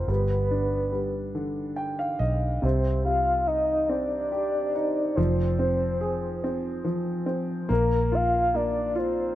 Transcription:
0.00 0.10 F4 soft
0.00 0.11 A#4 soft
0.00 0.11 C5 medium
0.08 2.17 G1 medium
0.08 0.91 G3 medium
0.08 1.76 B4 medium
0.51 2.17 D4 soft
0.92 2.59 G3 soft
1.35 2.59 D3 soft
1.76 1.97 G5 soft
1.99 2.19 F5 soft
2.19 2.60 B1 medium
2.19 2.60 D#5 soft
2.62 5.14 C2 medium
2.62 5.13 C3 medium
2.62 3.04 C5 medium
3.05 4.71 G3 soft
3.05 3.48 F5 medium
3.47 4.74 D#4 soft
3.47 3.90 D#5 medium
3.89 5.13 C4 soft
3.89 5.17 D5 loud
4.32 5.14 G4 soft
4.75 5.16 D#4 soft
5.16 7.66 F1 medium
5.16 6.83 F3 medium
5.16 7.27 C5 medium
5.59 6.42 C4 soft
6.01 7.65 G#4 soft
6.44 7.25 C4 medium
6.84 7.67 F3 soft
7.26 7.68 C4 soft
7.69 9.35 A#1 medium
7.69 8.53 A#3 medium
7.69 8.16 A#4 medium
8.12 8.94 F4 soft
8.12 8.57 F5 loud
8.54 9.35 A#3 medium
8.54 9.00 D5 loud
8.95 9.35 F4 medium
8.95 9.35 C5 loud

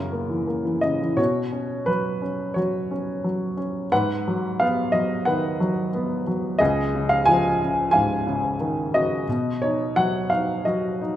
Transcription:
0.00 1.15 F#2 medium
0.00 0.82 C#3 soft
0.00 0.79 C#4 soft
0.00 0.79 E4 soft
0.00 0.78 A#4 medium
0.12 0.46 A#3 soft
0.29 0.64 E3 soft
0.47 1.16 A#3 soft
0.65 1.00 E3 soft
0.81 1.17 C#3 soft
0.81 1.19 D#5 medium
1.01 1.18 E3 soft
1.17 3.86 B2 medium
1.17 2.52 F#4 medium
1.17 1.89 C#5 medium
1.52 2.20 C#4 soft
1.86 2.55 F#3 soft
1.86 2.58 B4 medium
2.22 2.90 C#4 soft
2.54 3.23 F#3 soft
2.54 3.87 F#4 soft
2.54 3.52 C#5 medium
2.91 3.56 C#4 soft
3.24 3.90 F#3 soft
3.57 3.90 C#4 soft
3.92 6.56 G#2 medium
3.92 5.23 B4 medium
3.92 4.62 F#5 medium
4.28 4.91 F#3 soft
4.60 5.89 B3 medium
4.60 4.94 F5 medium
4.92 5.59 F#3 soft
4.92 5.27 D#5 medium
5.25 6.56 D#3 soft
5.25 6.56 B4 soft
5.25 6.22 F#5 medium
5.60 6.26 F#3 soft
5.94 6.58 B3 medium
6.27 6.59 F#3 soft
6.59 9.24 C#2 medium
6.59 7.89 G#4 medium
6.59 7.11 D#5 medium
6.95 7.60 C#3 medium
7.09 7.27 F5 medium
7.25 8.56 F3 medium
7.25 7.90 G#5 medium
7.62 8.25 C#3 soft
7.91 9.23 G#2 soft
7.91 9.23 F5 medium
7.91 8.54 G#5 medium
8.27 8.92 C#3 medium
8.60 9.26 D#3 soft
8.93 9.26 C#3 soft
8.93 10.28 F#4 medium
8.93 9.58 D#5 medium
9.29 11.16 B2 medium
9.62 10.30 D#4 soft
9.62 9.94 C#5 medium
9.96 10.65 F#3 soft
9.96 10.28 F#5 medium
10.30 11.00 D#4 soft
10.30 10.63 F5 medium
10.65 11.16 F#3 soft
10.65 11.16 F#4 soft
10.65 11.16 D#5 medium
11.01 11.16 D#4 soft

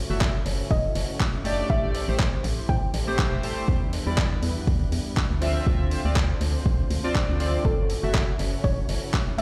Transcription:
0.00 3.64 A3 medium
0.00 1.68 C#4 medium
0.00 1.68 E4 medium
0.00 1.68 F#4 medium
0.00 0.74 C#5 loud
0.00 1.68 C#5 medium
0.10 0.39 F#1 loud
0.10 0.33 A3 medium
0.10 0.33 F#4 medium
0.10 0.34 E5 medium
0.21 kick loud
0.21 clap loud
0.46 0.62 F#1 loud
0.46 open hi-hat loud
0.71 0.87 E1 loud
0.71 1.73 D#5 loud
0.71 kick loud
0.71 open hi-hat medium
0.95 1.04 F#1 loud
0.95 open hi-hat loud
1.20 kick loud
1.20 clap loud
1.34 1.63 F#1 medium
1.44 2.05 A3 medium
1.44 2.05 G4 medium
1.44 2.05 D5 loud
1.44 open hi-hat loud
1.70 2.00 A1 medium
1.70 3.66 C4 medium
1.70 5.38 E4 medium
1.70 3.66 G4 medium
1.70 3.66 C5 medium
1.70 2.40 E5 loud
1.70 kick loud
1.95 open hi-hat loud
2.08 2.37 A1 loud
2.08 2.22 A3 medium
2.08 2.22 G4 medium
2.08 2.22 C5 medium
2.19 kick loud
2.19 clap loud
2.44 2.61 A1 loud
2.44 open hi-hat loud
2.69 2.77 A2 medium
2.69 3.15 G5 loud
2.69 kick loud
2.94 3.24 A1 medium
2.94 open hi-hat loud
3.07 3.41 A3 loud
3.07 3.41 G4 medium
3.07 3.41 C5 loud
3.19 kick loud
3.19 clap loud
3.32 3.39 E1 loud
3.43 3.67 A3 medium
3.43 3.67 G4 medium
3.43 3.67 C5 loud
3.43 open hi-hat loud
3.68 3.98 E2 loud
3.68 5.40 G3 medium
3.68 5.40 B3 medium
3.68 7.61 D4 medium
3.68 5.40 B4 medium
3.68 kick loud
3.93 open hi-hat loud
4.06 4.36 E2 loud
4.06 4.30 G3 medium
4.06 4.30 E4 medium
4.06 4.30 D5 medium
4.18 kick loud
4.18 clap loud
4.43 4.59 E2 loud
4.43 open hi-hat loud
4.67 4.84 D2 loud
4.67 kick loud
4.67 open hi-hat medium
4.92 5.01 E2 medium
4.92 open hi-hat loud
5.17 kick loud
5.17 clap loud
5.31 5.60 D2 medium
5.41 9.42 A3 medium
5.41 6.01 C4 medium
5.41 7.63 C4 medium
5.41 6.02 F4 medium
5.41 7.63 F4 medium
5.41 7.63 C5 medium
5.41 6.02 E5 loud
5.41 open hi-hat loud
5.67 5.97 D2 loud
5.67 kick loud
5.91 open hi-hat loud
6.05 6.34 D2 loud
6.05 6.18 C4 medium
6.05 6.19 F4 medium
6.05 6.19 D5 medium
6.16 kick loud
6.16 clap loud
6.41 6.57 D2 loud
6.41 open hi-hat loud
6.66 6.82 C2 loud
6.66 kick loud
6.90 6.99 D2 medium
6.90 open hi-hat loud
7.04 7.37 C4 loud
7.04 7.37 F4 medium
7.04 7.38 D5 loud
7.15 kick loud
7.15 clap loud
7.29 7.58 D2 medium
7.40 7.63 C4 medium
7.40 7.64 F4 medium
7.40 7.64 D5 loud
7.40 open hi-hat loud
7.65 7.95 F#1 loud
7.65 9.42 C#4 medium
7.65 9.42 E4 medium
7.65 9.42 F#4 medium
7.65 8.60 A4 medium
7.65 9.42 C#5 loud
7.65 kick loud
7.90 open hi-hat loud
8.03 8.32 F#1 loud
8.03 8.27 A3 medium
8.03 8.27 F#4 medium
8.03 8.27 E5 medium
8.14 kick loud
8.14 clap loud
8.39 8.56 F#1 loud
8.39 open hi-hat loud
8.64 8.80 E1 loud
8.64 9.10 C#5 loud
8.64 kick loud
8.64 open hi-hat medium
8.89 8.97 F#1 medium
8.89 open hi-hat loud
9.14 kick loud
9.14 clap loud
9.27 9.42 F#1 medium
9.38 9.42 A3 medium
9.38 9.42 G4 medium
9.38 9.42 E5 loud
9.38 open hi-hat loud

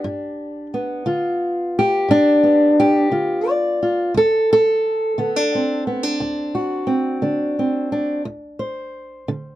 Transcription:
0.00 1.06 D4 soft
0.00 1.07 G4 medium
0.04 0.66 G2 medium
0.74 2.42 B3 soft
1.06 1.68 D3 medium
1.06 2.10 F4 soft
1.79 2.78 G4 medium
2.08 2.71 G2 medium
2.08 3.12 D4 loud
2.43 4.11 B3 soft
2.80 3.49 G4 medium
3.12 3.74 D3 medium
3.12 3.81 F4 soft
3.49 4.17 D5 medium
3.83 4.12 F4 soft
4.14 4.77 D2 medium
4.14 4.51 A4 medium
4.53 5.88 A4 loud
5.18 5.80 D3 medium
5.18 5.36 B3 soft
5.36 5.87 D4 soft
5.55 6.86 C4 soft
5.87 6.03 B3 soft
6.03 7.21 D4 soft
6.20 6.82 D2 medium
6.55 8.21 F#4 soft
6.87 7.56 C4 soft
7.22 7.84 D3 medium
7.22 7.91 D4 soft
7.59 8.22 C4 soft
7.92 8.22 D4 soft
8.25 8.87 D2 medium
8.59 9.55 C5 soft
9.28 9.55 D3 medium

